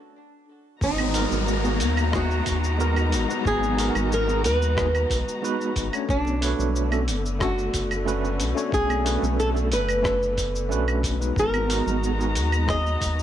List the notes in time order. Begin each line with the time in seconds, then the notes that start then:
Already playing: D4
0.81 G#1 G#3 B3 D#4 F#4 A#5, kick, downlifter, cabasa
0.98 high conga, cabasa, claves
1.13 G#3 B3 D#4 F#4 A#4, open hi-hat, cabasa
1.31 G#1, high conga, low conga, cabasa
1.48 cabasa
1.63 G#3 B3 D#4 F#4 G#4, high conga, cabasa
1.80 D#2, open hi-hat, cabasa
1.97 cabasa, claves
2.12 G#3 B3 D#4 F#4 G#4, kick, cross-stick, cabasa
2.31 cabasa
2.46 D#2, kick, open hi-hat, cabasa
2.64 cabasa
2.78 G#3 B3 D#4 F#4 A#4, cabasa
2.96 cabasa, claves
3.12 G#1, open hi-hat, cabasa
3.28 G#3 B3 D#4 F#4 B4, cabasa
3.45 G#1 G#4, kick, cabasa
3.63 high conga, cabasa
3.77 G#3 B3 D#4 F#4 A#4, open hi-hat, cabasa
3.95 G#1, high conga, low conga, cabasa, claves
4.12 A#4, cabasa
4.27 G#3 B3 D#4 F#4 G#4, high conga, cabasa
4.44 D#2 B4, open hi-hat, cabasa
4.62 cabasa
4.76 G#3 B3 D#4 F#4 G#4, kick, cross-stick, cabasa
4.95 cabasa, claves
5.10 B1, kick, open hi-hat, cabasa
5.28 cabasa
5.42 G#3 B3 D#4 F#4 B4, cabasa
5.61 cabasa
5.76 G#1, kick, open hi-hat, cabasa
5.92 A3 C#4 D4 F#4 C#5, cabasa, claves
6.08 B1 D3 A3 B3 D4, kick, cabasa
6.25 high conga, cabasa
6.41 A3 D4 F#4 B4 C#5, open hi-hat, cabasa
6.59 B1, high conga, low conga, cabasa
6.76 cabasa
6.90 A3 C#4 D4 F#4 A4, high conga, cabasa, claves
7.08 F#1, open hi-hat, cabasa
7.26 cabasa
7.39 A3 C#4 D4 F#4 A4, kick, cross-stick, cabasa
7.58 cabasa
7.73 F#1, kick, open hi-hat, cabasa
7.91 cabasa, claves
8.05 A3 C#4 D4 F#4 B4, cabasa
8.25 cabasa
8.40 B1, open hi-hat, cabasa
8.55 A3 C#4 D4 F#4 C#5, cabasa
8.72 B1 G#4, kick, cabasa
8.89 high conga, cabasa, claves
9.04 A3 C#4 D4 F#4 B4, open hi-hat, cabasa
9.22 B1, high conga, low conga, cabasa
9.40 A4, cabasa
9.54 A3 C#4 D4 F#4 A4, high conga, cabasa
9.71 F#1 B4, open hi-hat, cabasa
9.89 cabasa, claves
10.02 A3 C#4 D4 F#4 A4, kick, cross-stick, cabasa
10.23 cabasa
10.37 kick, open hi-hat, cabasa
10.55 cabasa
10.69 B1 A3 C#4 D4 F#4 B4, cabasa
10.88 cabasa, claves
11.03 kick, open hi-hat, cabasa
11.19 G#3 B3 D#4 F#4 B4, cabasa
11.35 G#1 G#3 B3 D#4 F#4 A#5, kick, cabasa
11.39 A#4
11.54 high conga, cabasa, claves
11.68 G#3 B3 D#4 F#4 A#4, open hi-hat, cabasa
11.86 G#1, high conga, low conga, cabasa
12.04 cabasa
12.18 G#3 B3 D#4 F#4 G#4, high conga, cabasa
12.30 G#4
12.35 D#2, open hi-hat, cabasa
12.52 cabasa, claves
12.66 G#3 B3 D#4 F#4 G#4 D#5, kick, cross-stick, cabasa
12.86 cabasa
13.01 D#2, kick, open hi-hat, cabasa
13.19 cabasa